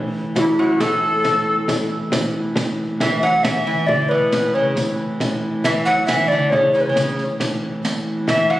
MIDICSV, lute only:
0, 0, Header, 1, 2, 480
1, 0, Start_track
1, 0, Key_signature, 3, "major"
1, 0, Tempo, 439883
1, 875, Time_signature, 6, 3, 24, 8
1, 9381, End_track
2, 0, Start_track
2, 0, Title_t, "Lute"
2, 0, Program_c, 0, 24
2, 406, Note_on_c, 0, 40, 65
2, 641, Note_off_c, 0, 40, 0
2, 645, Note_on_c, 0, 42, 90
2, 878, Note_on_c, 0, 45, 90
2, 888, Note_off_c, 0, 42, 0
2, 1795, Note_off_c, 0, 45, 0
2, 3286, Note_on_c, 0, 52, 78
2, 3523, Note_on_c, 0, 54, 94
2, 3530, Note_off_c, 0, 52, 0
2, 3769, Note_off_c, 0, 54, 0
2, 3771, Note_on_c, 0, 52, 93
2, 3990, Note_off_c, 0, 52, 0
2, 4003, Note_on_c, 0, 52, 94
2, 4232, Note_off_c, 0, 52, 0
2, 4236, Note_on_c, 0, 50, 75
2, 4484, Note_on_c, 0, 47, 81
2, 4485, Note_off_c, 0, 50, 0
2, 4705, Note_off_c, 0, 47, 0
2, 4725, Note_on_c, 0, 47, 69
2, 4966, Note_on_c, 0, 49, 73
2, 4970, Note_off_c, 0, 47, 0
2, 5186, Note_off_c, 0, 49, 0
2, 6173, Note_on_c, 0, 52, 80
2, 6402, Note_on_c, 0, 54, 96
2, 6414, Note_off_c, 0, 52, 0
2, 6645, Note_on_c, 0, 52, 96
2, 6648, Note_off_c, 0, 54, 0
2, 6813, Note_off_c, 0, 52, 0
2, 6826, Note_on_c, 0, 52, 55
2, 6883, Note_off_c, 0, 52, 0
2, 6893, Note_on_c, 0, 50, 76
2, 7121, Note_off_c, 0, 50, 0
2, 7126, Note_on_c, 0, 49, 75
2, 7360, Note_off_c, 0, 49, 0
2, 7373, Note_on_c, 0, 49, 74
2, 7505, Note_off_c, 0, 49, 0
2, 7521, Note_on_c, 0, 49, 67
2, 7878, Note_off_c, 0, 49, 0
2, 9039, Note_on_c, 0, 52, 77
2, 9275, Note_on_c, 0, 54, 97
2, 9285, Note_off_c, 0, 52, 0
2, 9381, Note_off_c, 0, 54, 0
2, 9381, End_track
0, 0, End_of_file